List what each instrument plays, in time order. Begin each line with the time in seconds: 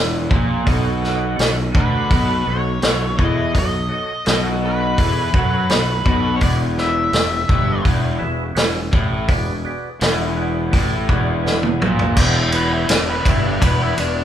Already playing: fingered electric bass E1, overdriven electric guitar E2
0.30 fingered electric bass A#1, overdriven electric guitar A#2, kick
0.65 fingered electric bass B1, overdriven electric guitar B2, tonewheel organ F#4 A4 C#5 D#5, kick, open hi-hat
1.02 tonewheel organ F#4 A4 C#5 D#5, snare
1.36 fingered electric bass B1, overdriven electric guitar B2, tonewheel organ F#4 A4 C#5 F#5, snare, open hi-hat
1.72 fingered electric bass D2, overdriven electric guitar D3, tonewheel organ F#4 A4 C#5 D#5, lead electric guitar B4, kick
2.10 fingered electric bass B1, overdriven electric guitar B2, tonewheel organ F#4 A4 C#5 F#5, kick, open hi-hat
2.47 fingered electric bass B1, overdriven electric guitar B2, tonewheel organ F#4 A4 C#5 F#5, lead electric guitar C#5
2.82 fingered electric bass B1, overdriven electric guitar B2, tonewheel organ F#4 A4 C#5 F#5, snare, open hi-hat
3.18 fingered electric bass E2, overdriven electric guitar E3, tonewheel organ F#4 A4 C#5 D#5, kick
3.25 lead electric guitar D#5
3.53 fingered electric bass B1, overdriven electric guitar B2, tonewheel organ F#4 A4 C#5 D#5, kick, open hi-hat
3.59 lead electric guitar D#5
3.89 tonewheel organ F#4 A4 C#5 D#5
4.25 fingered electric bass B1, overdriven electric guitar B2, tonewheel organ F#4 A4 C#5 D#5, snare, open hi-hat
4.32 lead electric guitar D#5
4.62 tonewheel organ F#4 A4 C#5 D#5, lead electric guitar B4
4.98 fingered electric bass E2, overdriven electric guitar E3, tonewheel organ F#4 A4 C#5 D#5, kick, open hi-hat
5.33 fingered electric bass F#2, overdriven electric guitar F#3, tonewheel organ F#4 A4 C#5 F#5, kick
5.69 fingered electric bass B1, overdriven electric guitar B2, tonewheel organ F#4 A4 C#5 F#5, snare, open hi-hat
6.06 fingered electric bass B1, overdriven electric guitar B2, tonewheel organ F#4 A4 C#5 D#5, kick
6.36 lead electric guitar C#5
6.40 fingered electric bass E1, overdriven electric guitar E2, tonewheel organ F#4 G#4 B4 D5, lead electric guitar D5, kick, open hi-hat
6.77 tonewheel organ F#4 G#4 B4 D5, lead electric guitar E5, snare
7.13 fingered electric bass E1, overdriven electric guitar E2, tonewheel organ F#4 G#4 B4 D5, snare, open hi-hat
7.49 fingered electric bass G1, overdriven electric guitar G2, tonewheel organ F#4 G#4 B4 D5, kick
7.83 fingered electric bass E1, overdriven electric guitar E2, tonewheel organ F#4 G#4 B4 D5, kick, open hi-hat
8.19 fingered electric bass E1, overdriven electric guitar E2, tonewheel organ F#4 G#4 B4 E5
8.55 fingered electric bass E1, overdriven electric guitar E2, tonewheel organ F#4 G#4 B4 C#5, snare, open hi-hat
8.91 fingered electric bass A1, overdriven electric guitar A2, tonewheel organ F#4 G#4 B4 D5, kick
9.28 fingered electric bass E1, overdriven electric guitar E2, tonewheel organ F#4 G#4 B4 D5, kick, open hi-hat
9.65 tonewheel organ F#4 G#4 B4 D5
10.01 fingered electric bass E1, overdriven electric guitar E2, tonewheel organ F#4 G#4 B4 D5, snare, open hi-hat
10.36 tonewheel organ F#4 G#4 B4 D5
10.70 fingered electric bass A1, overdriven electric guitar A2, tonewheel organ F#4 G#4 B4 D5, kick, open hi-hat
11.09 fingered electric bass E1, overdriven electric guitar E2, tonewheel organ F#4 G#4 B4 D5, kick
11.42 tonewheel organ F#4 G#4 B4 D5 G#5
11.46 snare
11.63 high tom
11.80 fingered electric bass A#1, overdriven electric guitar A#2, tonewheel organ F#4 G#4 B4 D5 E5, mid tom
11.99 floor tom
12.14 fingered electric bass E1, tonewheel organ F#4 G#4 B4 D5, kick, crash
12.18 overdriven electric guitar E2
12.51 tonewheel organ F#4 G#4 B4 C#5, lead electric guitar B4, ride
12.73 lead electric guitar E4
12.88 fingered electric bass E1, overdriven electric guitar E2, lead electric guitar D4, tonewheel organ F#4 G#4 B4 D5, snare, ride
13.09 lead electric guitar B4
13.25 fingered electric bass G1, overdriven electric guitar G2, tonewheel organ F#4 G#4 B4 D5, kick, ride
13.29 lead electric guitar E4
13.47 lead electric guitar D4
13.59 fingered electric bass E1, overdriven electric guitar E2, tonewheel organ F#4 G#4 B4 D5, kick, ride
13.65 lead electric guitar B4
13.82 lead electric guitar E4
13.96 fingered electric bass E1, overdriven electric guitar E2, tonewheel organ F#4 G#4 B4 D5, ride
14.00 lead electric guitar D4